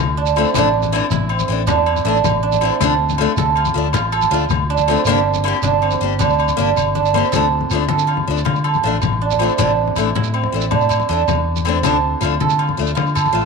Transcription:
Already playing: C4 D4 F4 A4
0.00 D2
0.17 D4
0.26 shekere
0.36 F3 A3 C4 D4, low agogo
0.45 shekere
0.54 A1 E3 A3 D4, high conga, low conga, low agogo, shekere
0.74 low conga
0.82 low conga, shekere
0.92 E3 A3 D4 E4, low agogo
1.10 A1 E4, high conga, low conga, shekere
1.29 C4, low agogo
1.39 low conga, shekere
1.48 A1 E3 A3 D4
1.59 low conga
1.67 E2 D4, high conga, low conga, low agogo, shekere
1.86 E4, low agogo
1.96 low conga, shekere
2.05 A1 E3 A3 D4, shekere
2.16 shekere
2.24 A1, high conga, low conga, low agogo, shekere
2.43 D4
2.52 low conga, shekere
2.61 E3 A3 C4, low agogo
2.65 D4
2.80 D2 F3 A3 D4 A4, high conga, low conga, low agogo, shekere
3.00 low conga
3.09 low conga, shekere
3.18 F3 A3 D4 F4, low agogo
3.37 D2 A4, high conga, low conga, shekere
3.56 F4, low agogo
3.65 low conga, shekere
3.74 D2 F3 A3 D4
3.85 low conga
3.93 A1 F4, high conga, low conga, low agogo, shekere
4.12 A4, low agogo
4.21 low conga, shekere
4.30 D2 F3 A3 D4 F4, shekere
4.40 shekere
4.49 D2, high conga, low conga, low agogo, shekere
4.70 D4
4.77 low conga, shekere
4.88 F3 A3 C4 D4, low agogo
4.97 shekere
5.05 G1 A#3 D4, high conga, low conga, low agogo, shekere
5.09 G4
5.27 low conga
5.34 low conga, shekere
5.44 A#3 D4 E4 G4, low agogo
5.62 G1 D4, high conga, low conga, shekere
5.82 C4, low agogo
5.91 low conga, shekere
6.01 G1 A#3 D4 G4, low conga, shekere
6.19 D2 D4, high conga, low conga, low agogo, shekere
6.29 low conga, shekere
6.39 low conga, low agogo, shekere
6.48 low conga, shekere
6.57 G1 A#3 D4 G4, high conga, shekere
6.77 G1, high conga, low agogo, shekere
6.95 D4, low conga, shekere
7.05 shekere
7.14 A#3 C4 D4 G4, low conga, low agogo
7.25 shekere
7.32 D2 F3 A3 D4 A4, high conga, low conga, low agogo, shekere
7.61 low conga
7.70 D2 F3 A3, low conga, low agogo, shekere
7.75 D4
7.88 D3 A4, high conga, low conga
7.99 shekere
8.07 F4, low agogo
8.17 low conga
8.27 D2 F3 A3 D4
8.37 shekere
8.45 D3 F4, high conga, low conga, low agogo
8.55 shekere
8.64 A4, low conga, low agogo
8.74 low conga, shekere
8.83 A1 F3 A3 D4 F4
9.02 A1, high conga, low conga, low agogo, shekere
9.13 low conga
9.22 D4
9.31 low conga, shekere
9.39 F3 A3 C4 D4, low agogo
9.49 low conga, shekere
9.58 A1 E3 A3 D4, high conga, low conga, low agogo, shekere
9.87 low conga
9.96 A1 E3 A3 D4 E4, low agogo, shekere
10.15 A2 E4, high conga, low conga
10.24 shekere
10.34 C4, low agogo
10.44 low conga
10.52 A1 E3 A3 D4
10.61 shekere
10.71 A2 D4, high conga, low conga, low agogo
10.81 shekere
10.89 E4, low conga, low agogo, shekere
11.00 low conga, shekere
11.09 E2 E3 A3 D4
11.28 E2, high conga, low conga, low agogo, shekere
11.56 low conga, shekere
11.65 E3 A3 C4 D4, low agogo
11.75 shekere
11.83 D2 F3 A3 D4 A4, high conga, low conga, low agogo, shekere
12.21 D2 F3 A3 D4 F4, low agogo, shekere
12.40 D3 A4, high conga, low conga
12.49 shekere
12.59 F4, low agogo
12.69 low conga
12.77 D2 F3 A3 D4
12.87 shekere
12.95 D3 F4, high conga, low conga, low agogo
13.06 shekere
13.15 A4, low conga, low agogo, shekere
13.26 low conga
13.33 A1 F3 A3 F4

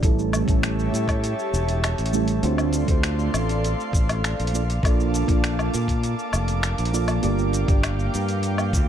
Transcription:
0.03 A1 G3 A3 C#4 E4 G4 A4 C#5 E5 A5, kick, closed hi-hat, shaker
0.19 shaker
0.33 closed hi-hat, low woodblock, shaker
0.45 A1 G3 A3 C#4 E4, kick, closed hi-hat, shaker
0.50 A4
0.63 finger snap, closed hi-hat, shaker
0.79 shaker
0.93 A2, closed hi-hat, shaker
1.08 kick, closed hi-hat, low woodblock, shaker
1.24 closed hi-hat, shaker
1.39 shaker
1.53 E1, shaker
1.69 closed hi-hat, shaker
1.84 finger snap, closed hi-hat, low woodblock, shaker
1.98 A1, closed hi-hat, shaker
2.06 closed hi-hat
2.13 G3 A3 C#4 E4 A4, shaker
2.28 closed hi-hat, shaker
2.43 D2 A3 C4 D4 F4 A4 C5 D5 F5 C6, closed hi-hat, shaker
2.58 low woodblock, shaker
2.73 closed hi-hat, shaker
2.86 D2 A3 C4 D4, kick, closed hi-hat, shaker
2.90 F4 C5
3.03 finger snap, closed hi-hat, shaker
3.19 shaker
3.34 A1, closed hi-hat, low woodblock, shaker
3.49 closed hi-hat, shaker
3.64 closed hi-hat, shaker
3.80 shaker
3.93 A1, kick, shaker
4.09 closed hi-hat, low woodblock, shaker
4.24 finger snap, closed hi-hat, shaker
4.40 A#1, closed hi-hat, shaker
4.47 closed hi-hat
4.53 A#3 D4 F4 A4 D5 A5 D6, shaker
4.70 closed hi-hat, shaker
4.83 A#1 A#3 D4 F4 A4 D5, kick, closed hi-hat, low woodblock, shaker
5.00 shaker
5.14 closed hi-hat, shaker
5.27 A#1 A#3 D4 F4 A4, kick, closed hi-hat, shaker
5.32 D5
5.44 finger snap, closed hi-hat, shaker
5.59 low woodblock, shaker
5.74 A#2, closed hi-hat, shaker
5.88 kick, closed hi-hat, shaker
6.03 closed hi-hat, shaker
6.19 shaker
6.33 F1, low woodblock, shaker
6.48 closed hi-hat, shaker
6.63 finger snap, closed hi-hat, shaker
6.78 A#1, closed hi-hat, shaker
6.85 closed hi-hat
6.92 A#3 D4 F4 A4 D5, shaker
7.08 closed hi-hat, low woodblock, shaker
7.22 G1 A#3 D4 F4 G4 D5 F5 G5, closed hi-hat, shaker
7.39 shaker
7.53 closed hi-hat, shaker
7.65 G1 A#3 D4 F4 G4, kick, closed hi-hat, shaker
7.70 D5
7.83 finger snap, closed hi-hat, low woodblock, shaker
7.99 shaker
8.14 G2, closed hi-hat, shaker
8.29 closed hi-hat, shaker
8.43 closed hi-hat, shaker
8.58 low woodblock, shaker
8.73 D2, kick, closed hi-hat, shaker

